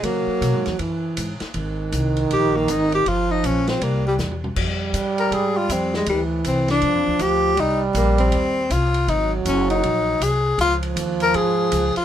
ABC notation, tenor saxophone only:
X:1
M:4/4
L:1/8
Q:"Swing" 1/4=159
K:Ab
V:1 name="Tenor saxophone"
B,4 z4 | z4 G B, E G | F E D C B, G, z2 | z3 B A F C A, |
G, z C =D3 G2 | E z B, C3 F2 | E z D E3 A2 | F z2 B A3 F |]